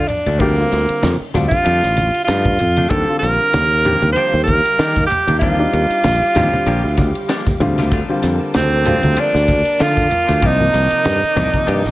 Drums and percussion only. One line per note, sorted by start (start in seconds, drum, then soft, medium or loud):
0.08 hi-hat pedal medium
0.08 ride medium
0.08 low conga medium
0.26 ride medium
0.26 high conga medium
0.40 kick medium
0.40 ride medium
0.72 snare soft
0.72 hi-hat pedal medium
0.72 ride medium
0.89 ride medium
1.03 snare medium
1.03 ride medium
1.03 high conga medium
1.34 snare soft
1.34 hi-hat pedal medium
1.34 ride medium
1.34 low conga medium
1.51 kick medium
1.51 snare soft
1.51 high conga medium
1.66 ride medium
1.83 snare soft
1.97 hi-hat pedal medium
1.97 ride medium
1.97 high conga medium
2.14 ride soft
2.28 snare medium
2.28 ride medium
2.45 kick medium
2.45 high conga medium
2.45 low conga medium
2.59 hi-hat pedal medium
2.59 ride soft
2.59 low conga medium
2.76 ride medium
2.76 high conga medium
2.90 kick loud
2.90 ride medium
3.23 snare soft
3.23 hi-hat pedal medium
3.23 ride medium
3.53 snare loud
3.53 ride medium
3.53 high conga medium
3.85 hi-hat pedal medium
3.85 ride medium
3.85 low conga medium
4.02 ride medium
4.02 high conga medium
4.16 ride medium
4.48 kick medium
4.48 hi-hat pedal medium
4.48 ride medium
4.48 high conga medium
4.65 ride medium
4.79 snare loud
4.79 ride medium
4.96 kick medium
4.96 snare soft
4.96 high conga medium
4.96 low conga medium
5.10 hi-hat pedal medium
5.10 ride medium
5.10 low conga medium
5.28 ride medium
5.28 high conga medium
5.41 kick medium
5.41 ride medium
5.73 hi-hat pedal medium
5.73 ride medium
5.90 ride medium
6.04 snare medium
6.04 ride medium
6.04 high conga medium
6.35 snare soft
6.35 hi-hat pedal medium
6.35 ride medium
6.35 low conga medium
6.54 high conga medium
6.66 ride medium
6.97 kick medium
6.97 snare soft
6.97 hi-hat pedal medium
6.97 ride medium
6.97 high conga medium
7.15 ride medium
7.29 snare medium
7.29 ride medium
7.47 kick medium
7.47 snare soft
7.47 high conga medium
7.47 low conga medium
7.61 hi-hat pedal medium
7.61 ride soft
7.61 low conga medium
7.78 snare soft
7.78 ride medium
7.78 high conga medium
7.92 kick loud
7.92 ride medium
8.23 snare soft
8.23 hi-hat pedal medium
8.23 ride medium
8.54 snare loud
8.54 ride medium
8.54 high conga medium
8.85 hi-hat pedal medium
8.85 ride medium
8.85 low conga medium
9.03 ride medium
9.03 high conga medium
9.17 ride medium
9.35 snare soft
9.48 kick medium
9.48 snare soft
9.48 hi-hat pedal medium
9.48 ride medium
9.48 high conga medium
9.65 ride medium
9.80 snare medium
9.80 ride medium
9.97 kick medium
9.97 snare soft
9.97 high conga medium
9.97 low conga medium
10.11 hi-hat pedal medium
10.11 ride medium
10.11 low conga medium
10.29 snare soft
10.29 ride medium
10.29 high conga medium
10.42 kick loud
10.42 ride medium
10.74 snare soft
10.74 hi-hat pedal medium
10.74 ride medium
10.91 ride medium
11.05 snare loud
11.05 ride medium
11.05 high conga medium
11.37 snare soft
11.37 hi-hat pedal medium
11.37 ride medium
11.37 low conga medium
11.54 kick medium
11.54 snare soft
11.54 high conga medium
11.68 ride medium
11.85 snare soft